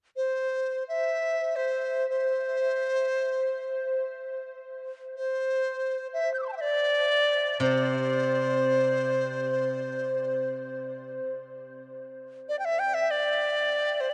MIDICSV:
0, 0, Header, 1, 3, 480
1, 0, Start_track
1, 0, Tempo, 500000
1, 13572, End_track
2, 0, Start_track
2, 0, Title_t, "Dizi"
2, 0, Program_c, 0, 73
2, 159, Note_on_c, 0, 72, 61
2, 804, Note_off_c, 0, 72, 0
2, 849, Note_on_c, 0, 76, 69
2, 1497, Note_on_c, 0, 72, 57
2, 1511, Note_off_c, 0, 76, 0
2, 2005, Note_off_c, 0, 72, 0
2, 2011, Note_on_c, 0, 72, 65
2, 3871, Note_off_c, 0, 72, 0
2, 4961, Note_on_c, 0, 72, 66
2, 5834, Note_off_c, 0, 72, 0
2, 5891, Note_on_c, 0, 76, 64
2, 6078, Note_off_c, 0, 76, 0
2, 6084, Note_on_c, 0, 91, 30
2, 6131, Note_off_c, 0, 91, 0
2, 6136, Note_on_c, 0, 88, 32
2, 6156, Note_off_c, 0, 88, 0
2, 6156, Note_on_c, 0, 86, 38
2, 6192, Note_off_c, 0, 86, 0
2, 6197, Note_on_c, 0, 84, 33
2, 6219, Note_off_c, 0, 84, 0
2, 6225, Note_on_c, 0, 81, 41
2, 6260, Note_off_c, 0, 81, 0
2, 6266, Note_on_c, 0, 79, 44
2, 6298, Note_off_c, 0, 79, 0
2, 6304, Note_on_c, 0, 76, 54
2, 6345, Note_on_c, 0, 74, 87
2, 6360, Note_off_c, 0, 76, 0
2, 7305, Note_off_c, 0, 74, 0
2, 7311, Note_on_c, 0, 72, 64
2, 10658, Note_off_c, 0, 72, 0
2, 11989, Note_on_c, 0, 74, 62
2, 12083, Note_off_c, 0, 74, 0
2, 12087, Note_on_c, 0, 79, 50
2, 12144, Note_on_c, 0, 76, 73
2, 12158, Note_off_c, 0, 79, 0
2, 12281, Note_on_c, 0, 79, 72
2, 12295, Note_off_c, 0, 76, 0
2, 12423, Note_on_c, 0, 76, 74
2, 12437, Note_off_c, 0, 79, 0
2, 12583, Note_on_c, 0, 74, 71
2, 12598, Note_off_c, 0, 76, 0
2, 13444, Note_on_c, 0, 72, 54
2, 13458, Note_off_c, 0, 74, 0
2, 13534, Note_on_c, 0, 74, 53
2, 13549, Note_off_c, 0, 72, 0
2, 13572, Note_off_c, 0, 74, 0
2, 13572, End_track
3, 0, Start_track
3, 0, Title_t, "Guzheng"
3, 0, Program_c, 1, 107
3, 7295, Note_on_c, 1, 48, 45
3, 10728, Note_off_c, 1, 48, 0
3, 13572, End_track
0, 0, End_of_file